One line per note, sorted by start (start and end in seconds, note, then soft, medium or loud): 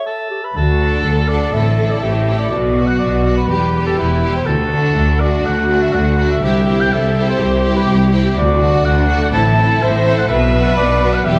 0.00 0.29 E5 soft
0.06 0.29 A4 soft
0.06 0.46 A4 soft
0.31 0.42 G4 soft
0.44 0.56 B4 soft
0.55 0.99 D2 soft
0.55 1.56 D3 soft
0.55 1.02 F#4 soft
0.55 1.30 A4 soft
0.71 2.54 A3 soft
0.79 1.28 D4 soft
0.79 1.28 F#4 soft
0.79 1.28 A4 soft
0.87 1.20 A4 soft
1.04 1.49 D2 soft
1.04 2.02 A4 soft
1.04 1.56 F#5 soft
1.28 1.54 D4 soft
1.28 1.54 F#4 soft
1.28 1.53 A4 soft
1.28 1.55 D5 soft
1.38 1.56 F#4 soft
1.54 1.98 A1 soft
1.54 1.97 A2 soft
1.54 2.55 A2 soft
1.54 1.78 C4 soft
1.54 1.79 E4 soft
1.54 1.78 A4 soft
1.54 1.93 E5 medium
1.71 2.55 E3 soft
1.80 2.26 C4 soft
1.80 2.26 E4 soft
1.80 2.28 A4 soft
1.87 2.19 A4 soft
1.87 2.00 D5 soft
2.00 2.47 A1 soft
2.00 2.47 A2 soft
2.00 2.53 G4 soft
2.00 2.38 E5 soft
2.00 2.55 E5 soft
2.20 2.55 A4 soft
2.27 2.52 C4 soft
2.27 2.52 E4 soft
2.27 2.53 A4 soft
2.37 2.55 E4 soft
2.37 2.49 D5 soft
2.49 2.96 B1 soft
2.49 3.52 B2 soft
2.49 2.96 B2 soft
2.49 2.88 D5 soft
2.54 3.49 F#4 soft
2.69 3.52 F#3 soft
2.77 3.25 B3 soft
2.77 3.25 F#4 soft
2.85 3.16 F#4 soft
2.85 2.98 F#5 soft
2.99 3.45 B1 soft
2.99 3.44 B2 soft
2.99 4.50 B4 soft
2.99 3.36 D5 medium
3.17 3.52 F#4 soft
3.26 3.49 B3 soft
3.26 3.50 F#4 soft
3.33 3.64 B3 soft
3.37 3.47 B4 soft
3.48 3.93 E1 soft
3.48 3.93 E2 soft
3.48 4.49 E3 soft
3.48 3.74 G3 soft
3.48 3.74 B3 soft
3.48 3.74 G4 soft
3.48 3.99 G4 soft
3.48 3.85 B4 medium
3.65 4.49 B3 soft
3.75 4.23 G3 soft
3.75 4.23 B3 soft
3.75 4.22 G4 soft
3.82 4.14 G4 soft
3.87 3.97 A4 soft
3.98 4.42 E1 soft
3.98 4.42 E2 soft
3.98 4.47 E4 soft
3.98 4.38 B4 medium
3.98 4.49 E5 soft
4.15 4.50 G4 soft
4.23 4.48 G3 soft
4.23 4.48 B3 soft
4.23 4.47 G4 soft
4.31 4.49 E4 soft
4.36 4.48 C5 soft
4.46 4.90 D2 soft
4.46 4.91 D2 soft
4.46 5.43 D3 soft
4.46 4.96 F#4 soft
4.46 5.22 A4 medium
4.64 5.58 A3 soft
4.73 5.20 A3 soft
4.73 5.20 D4 soft
4.73 5.21 F#4 soft
4.80 5.11 F#4 soft
4.95 5.39 D2 soft
4.95 6.39 F#4 medium
4.95 5.92 D5 soft
5.12 5.76 F#4 soft
5.20 5.68 A3 soft
5.20 5.69 D4 soft
5.20 5.68 F#4 soft
5.20 5.47 D5 medium
5.28 6.24 D4 soft
5.44 5.88 D2 soft
5.44 6.44 D3 soft
5.44 5.81 F#5 medium
5.59 6.43 A3 soft
5.69 6.17 A3 soft
5.69 6.17 D4 soft
5.69 6.16 F#4 soft
5.77 6.08 F#4 soft
5.82 5.94 E5 medium
5.93 6.36 D2 soft
5.93 6.36 D2 medium
5.93 6.44 D5 soft
5.93 6.30 F#5 medium
6.09 6.44 F#4 soft
6.18 6.42 A3 soft
6.18 6.42 D4 soft
6.18 6.42 F#4 soft
6.25 6.44 D4 soft
6.31 6.42 E5 medium
6.42 6.85 C2 medium
6.42 6.85 C2 soft
6.42 7.37 C3 soft
6.42 6.65 C4 soft
6.42 6.65 E4 soft
6.42 6.90 G4 soft
6.42 6.65 G4 soft
6.42 6.82 E5 medium
6.58 7.54 G3 soft
6.66 7.14 C4 soft
6.66 7.14 E4 soft
6.66 7.14 G4 soft
6.73 7.04 G4 soft
6.81 6.94 G5 medium
6.90 7.34 C2 medium
6.90 7.34 C2 soft
6.90 7.39 A4 soft
6.90 7.86 E5 soft
6.90 7.28 E5 medium
7.05 7.71 G4 soft
7.16 7.63 C4 soft
7.16 7.62 E4 soft
7.16 7.62 G4 soft
7.22 8.19 E4 soft
7.29 7.40 C5 medium
7.39 7.82 C2 medium
7.39 7.82 C2 soft
7.39 8.38 C3 soft
7.39 8.37 G4 medium
7.39 7.75 C5 medium
7.56 8.38 G3 soft
7.63 8.11 C4 soft
7.63 8.10 E4 soft
7.63 8.10 G4 soft
7.72 8.02 G4 soft
7.76 7.81 B4 medium
7.87 8.30 C2 soft
7.87 8.31 C2 medium
7.87 8.38 E5 soft
8.04 8.38 G4 soft
8.11 8.36 C4 soft
8.11 8.36 E4 soft
8.11 8.35 G4 soft
8.21 8.38 E4 soft
8.36 8.79 D2 medium
8.36 8.80 D2 medium
8.36 9.35 D3 soft
8.36 8.85 F#4 medium
8.36 8.87 D5 medium
8.53 9.16 A3 soft
8.58 9.07 A3 soft
8.58 9.07 F#4 soft
8.70 9.00 F#4 soft
8.84 9.27 D2 medium
8.84 9.32 D4 medium
8.84 9.21 F#5 medium
8.84 9.36 F#5 soft
9.02 9.35 F#4 soft
9.08 9.32 A3 soft
9.08 9.32 F#4 soft
9.17 10.32 A3 soft
9.23 9.28 F#5 medium
9.31 9.76 A1 medium
9.31 9.76 A2 medium
9.31 10.32 A2 soft
9.31 9.56 C4 soft
9.31 9.55 E4 soft
9.31 9.82 E4 medium
9.31 9.54 A4 soft
9.31 9.84 A5 medium
9.49 10.32 E3 soft
9.55 10.03 C4 soft
9.55 10.04 E4 soft
9.55 10.03 A4 soft
9.65 9.96 A4 soft
9.81 10.24 A1 medium
9.81 10.24 A2 medium
9.81 10.29 C5 medium
9.81 10.32 E5 soft
9.81 10.18 E5 medium
9.97 10.31 A4 soft
10.04 10.29 C4 soft
10.04 10.29 E4 soft
10.04 10.28 A4 soft
10.12 10.31 E4 soft
10.19 10.28 F#5 medium
10.29 10.72 B1 medium
10.29 11.28 B2 medium
10.29 10.72 B2 medium
10.29 11.25 B4 medium
10.29 10.77 E5 medium
10.44 11.28 F#3 soft
10.54 11.00 B3 soft
10.54 11.00 D4 soft
10.54 11.01 F#4 soft
10.61 10.93 F#4 soft
10.77 11.21 B1 medium
10.77 11.20 B2 medium
10.77 11.39 B4 soft
10.77 11.15 D5 medium
11.01 11.25 B3 soft
11.01 11.26 D4 soft
11.01 11.26 F#4 soft
11.10 11.39 B3 soft
11.10 11.26 F#5 medium
11.25 11.39 E1 medium
11.25 11.39 E2 medium
11.25 11.39 E3 medium
11.25 11.39 G3 soft
11.25 11.39 B3 soft
11.25 11.39 G4 soft
11.25 11.39 G4 medium
11.25 11.39 E5 medium